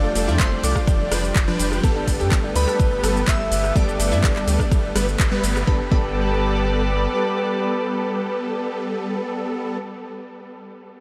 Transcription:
Already playing: F1 F3 G3 D4 A4 D5 G5 D6 G6
0.04 A3
0.15 F1 A3, open hi-hat, ride, shaker
0.28 F2 E4, shaker
0.39 F1 A3 C5 C6, kick, clap, ride, shaker
0.52 A3
0.63 C2 A3 D5 D6, open hi-hat, ride, shaker
0.76 F4, kick, cross-stick, shaker
0.87 F1, kick, ride, shaker
1.11 F1 F3 D4 B4, cross-stick, open hi-hat, ride, shaker
1.24 shaker
1.35 F1, kick, clap, ride, shaker
1.48 F3 D4 B4
1.59 F1, open hi-hat, ride, shaker
1.72 cross-stick, shaker
1.83 G1 G3 A3 B3 A4, kick, ride, shaker
1.96 D4
2.08 G1 D4, kick, open hi-hat, ride, shaker
2.20 G2 G4, shaker
2.32 G1 D4, kick, clap, ride, shaker
2.44 D4
2.56 D2 D4 B4 B5, open hi-hat, ride, shaker
2.68 A4, cross-stick, shaker
2.80 G1, kick, ride, shaker
3.03 G1 G3 B3 A4, cross-stick, open hi-hat, ride, shaker
3.17 shaker
3.28 G1 E5 E6, kick, clap, ride, shaker
3.51 G1, open hi-hat, ride, shaker
3.64 cross-stick, shaker
3.75 G1 G3 B3 G4 A4 D5 D6, kick, ride, shaker
3.88 G3, shaker
3.99 G1 G3, open hi-hat, ride, shaker
4.12 G2 E4, shaker
4.24 G1 G3, kick, clap, ride, shaker
4.36 G3, clap
4.47 D2 G3, open hi-hat, ride, shaker
4.60 D4, kick, cross-stick, shaker
4.72 G1, kick, ride, shaker
4.96 G1 G3 B3 B4, cross-stick, open hi-hat, ride, shaker
5.09 shaker
5.19 G1, kick, clap, ride, shaker
5.32 G3 B3 B4
5.43 G1, open hi-hat, ride, shaker
5.56 cross-stick, shaker
5.67 G1 G3 B3 D4 G4 A4 B4 D5 B5, kick
5.91 G1 G3 B3 D4 A4 B4 B5, kick

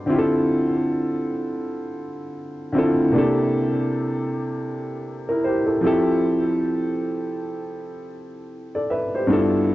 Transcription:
0.06 D3 C4 E4
0.10 F4 G4
0.18 A4
2.72 D3 C4 E4
2.76 F4 A4
3.12 C3 A#3 D4 E4
3.17 G4 A4
5.29 E4 A#4
5.44 G4 C5
5.66 E4 A4
5.81 F3 C4 E4
5.85 G4 A4
8.75 A4 D5
8.90 B4 E5
9.15 G4 C5
9.27 G2 B3 D4 E4
9.32 F4 A4

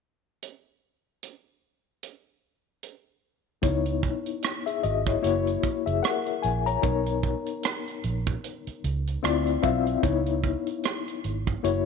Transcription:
0.42 closed hi-hat
1.23 closed hi-hat
2.03 closed hi-hat
2.83 closed hi-hat
3.62 C#2 B3 D#4 E4 C#5, kick, closed hi-hat
3.86 closed hi-hat
4.03 kick, closed hi-hat
4.26 closed hi-hat
4.43 cross-stick, closed hi-hat
4.66 G#4 E5, closed hi-hat
4.83 G#1 F#4 D#5, closed hi-hat
5.06 E4 C#5, kick, cross-stick, closed hi-hat
5.22 F#1 A#3 E4 F#4 C#5, closed hi-hat
5.47 closed hi-hat
5.63 kick, closed hi-hat
5.86 F#1 G#4 E5, closed hi-hat
6.03 A#4 F#5, cross-stick, closed hi-hat
6.26 closed hi-hat
6.42 A#1 G#5, closed hi-hat
6.66 C#5 A#5, closed hi-hat
6.82 B1 B3 D#4 A#4 C#5, kick, closed hi-hat
7.06 closed hi-hat
7.23 kick, closed hi-hat
7.46 closed hi-hat
7.63 cross-stick, closed hi-hat
7.87 closed hi-hat
8.04 A#1, closed hi-hat
8.27 kick, closed hi-hat
8.44 closed hi-hat
8.67 muted fingered electric bass stroke, closed hi-hat
8.84 C#2, closed hi-hat
9.07 closed hi-hat
9.23 D2 C4 E4 F4 D5, cross-stick, closed hi-hat
9.47 closed hi-hat
9.63 B1 C4 F4 E5 F5, kick, closed hi-hat
9.87 closed hi-hat
10.03 C#2 B3 D#4 E4 C#5, kick, closed hi-hat
10.26 closed hi-hat
10.44 kick, closed hi-hat
10.67 closed hi-hat
10.84 cross-stick, closed hi-hat
11.08 closed hi-hat
11.24 G#1, closed hi-hat
11.47 kick, closed hi-hat
11.63 F#1 A#3 E4 F#4 C#5, closed hi-hat

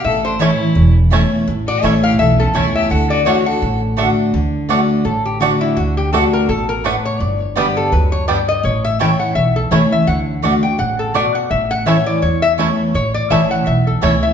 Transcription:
0.04 A1 A2 A4 E5
0.25 D4 C5
0.39 E3 A3 C#4 E4 C#5 A5
0.59 C#4 E4
0.75 E1 E2
1.10 E3 A3 C#4 E4 C#5 A5
1.47 A1 A2
1.67 F#4 D5
1.82 A1 E3 A3 C#4 E4 A4 C#5 E5 A5
2.03 G4 F5
2.19 B1 E2 A4 E5
2.38 C#4 A4
2.54 C#2 E3 A3 C#4 E4 C#5 A5
2.75 G4 E5
2.90 D2 D3 A4 F#5
3.10 F#4 D5
3.25 D3 A3 D4 F#4 C#5 D5 F#5
3.45 D4 F#4 A4 F#5
3.62 A1 A2
3.97 D3 A3 D4 F#4 D5 F#5
4.34 D2 D3
4.69 D3 A3 D4 F#4 D5 F#5
5.05 A1 A2 A4
5.25 G4
5.40 D3 A3 D4 F#4 D5 F#5
5.61 E4
5.77 D2 D3 F#4
5.97 G4
6.13 D3 A3 D4 F#4 A4 D5 F#5
6.33 A#4
6.49 A1 B2 A4
6.69 A#4
6.84 A2 A3 D4 F#4 B4 D5 F#5
7.05 C#5
7.20 G1 G2 D5
7.41 C#5
7.56 D3 G3 B3 D4 G4 B4 D5 G5
7.77 A4
7.92 D2 F#2 B4
8.12 C#5
8.28 G2 G3 B3 D4 G4 D5 G5
8.49 D#5
8.63 A1 A2 C#5
8.85 E5
8.99 E3 A3 C#4 E4 C#5 G5 A5
9.20 F#5
9.35 B1 E2 E5
9.56 A4
9.71 C#2 E3 A3 C#4 E4 C#5 A5
9.91 C#4 E4 E5
10.07 D2 D3 F#5
10.42 D3 A3 D4 F#4 D5 F#5
10.62 D4 F#4 G5
10.78 A1 C#3 F#5
10.99 A4
11.14 B2 A3 D4 F#4 D5 F#5
11.35 F#5
11.51 A1 A2 E5
11.71 F#5
11.86 E3 A3 C#4 E4 C#5 E5 A5
12.06 D5
12.22 E2 C#5
12.42 E5
12.58 E3 A3 C#4 E4 C#5 A5
12.94 A1 A2 C#5
13.14 D5
13.30 A1 E3 A3 C#4 E4 C#5 E5 A5
13.51 F#5
13.66 B1 E2 E5
13.87 A4
14.01 C#2 E3 A3 C#4 E4 C#5 A5
14.23 E5

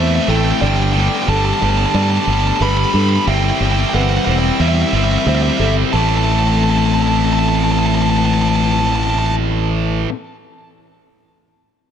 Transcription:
Already playing: E2 A2 E3 A3 C4 E4 A4 C5
0.08 E5
0.15 E5
0.23 E5
0.27 A1 A2 E3 A3 C4 E4 A4 G5
0.36 G5
0.45 G5
0.52 G5
0.60 G1 G2 D3 G3 A3 B3 D4 G4 D5 G5
0.67 G5
0.76 G5
0.83 G5
0.93 G2 D3 G3 B3 D4 G4 G5
1.00 G5
1.08 G5
1.16 G5
1.23 G5
1.27 G1 G2 D3 G3 B3 D4 G4 A4 A5
1.37 A5
1.45 A5
1.54 A5
1.60 G1 G2 D3 G3 B3 D4 G4 B4 A5
1.70 A5
1.77 A5
1.86 A5
1.94 G2 D3 G3 B3 D4 G4 D5 A5
2.03 A5
2.10 A5
2.17 A5
2.25 G1 G2 D3 G3 B3 D4 G4 A5
2.33 A5
2.40 A5
2.47 A5
2.56 G1 A5
2.61 G2 D3 G3 B3 D4 G4 B4 B5
2.70 B5
2.77 B5
2.85 B5
2.94 G2 D3 G3 B3 D4 G4 A4 B5
3.00 B5
3.09 B5
3.16 B5
3.26 G1 C3 E3 G3 C4 E4 G4 E5 G5
3.35 G5
3.43 G5
3.50 G5
3.58 G1 C3 G3 C4 E4 G4 G5
3.66 G5
3.72 G5
3.80 G5
3.89 C3 G5
3.94 G1 G3 C4 E4 G4 B4 F#5
4.02 F#5
4.10 F#5
4.18 F#5
4.25 E1 C3 G3 C4 E4 C5 F#5
4.29 G4 F#5
4.39 G5
4.59 E2 C3 G3 C4 E4 G4 E5
4.68 E5
4.75 E5
4.82 E5
4.89 G1 C3 E5
4.94 G3 C4 E4 G4 E5
5.04 E5
5.12 E5
5.18 E5
5.26 D2 C3 G3 C4 E4 G4 C5 E5
5.35 E5
5.42 E5
5.50 E5
5.57 G1 C3 G3 C4 E4 G4 A4 E5
5.66 E5
5.93 A1 A2 E3 A3 C4 E4 A4 A5
5.97 A4 A5
6.09 A5
6.17 A5
6.24 A5
6.31 A5
6.39 A5
6.48 A5
6.55 A5
6.63 A5
6.70 A5
6.78 A5
6.86 A5
6.94 A5
7.02 A5
7.08 A5
7.16 A5
7.25 A5
7.33 A5
7.39 A5
7.49 A5
7.56 A5
7.64 A5
7.71 A5
7.79 A5
7.86 A5
7.95 A5
8.02 A5
8.10 A5
8.17 A5
8.25 A5
8.34 A5
8.42 A5
8.49 A5
8.56 A5
8.64 A5
8.72 A5
8.79 A5
8.87 A5
8.96 A5
9.03 A5
9.10 A5
9.19 A5
9.26 A5

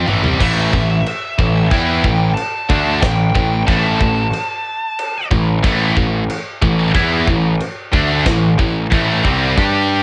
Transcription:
0.07 A1 A2 E3, mid tom
0.24 C2 C3 G3, floor tom
0.39 A1 A2 E3 A3 E5, kick, crash, china
0.73 A1 A2 E3, kick
1.06 china
1.39 A1 A2 E3, kick
1.71 E2 E3 B3 E4 G5, kick, china
2.04 A1 A2 E3, kick
2.30 G5 A5
2.37 china
2.69 D2 D3 A3 D4, kick
3.01 A1 A2 E3 G5, kick, snare, china
3.35 A1 A2 E3, kick
3.67 A1 A2 E3 A3 A5, kick, china
4.00 A1 A2 E3, kick
4.33 china
4.99 china
5.31 A1 A2 E3, kick
5.63 A1 A2 E3 A3, kick, china
5.96 A1 A2 E3, kick
6.29 china
6.62 A1 A2 E3, kick
6.95 E2 E3 B3 E4, kick, china
7.28 A1 A2 E3, kick
7.60 china
7.93 D2 D3 A3 D4, kick
8.26 A1 A2 E3, kick, snare, china
8.59 A1 A2 E3, kick
8.91 A1 A2 E3 A3, kick, china
9.24 C2 C3 G3 C4, kick
9.57 G2 G3 D4 G4, kick, china

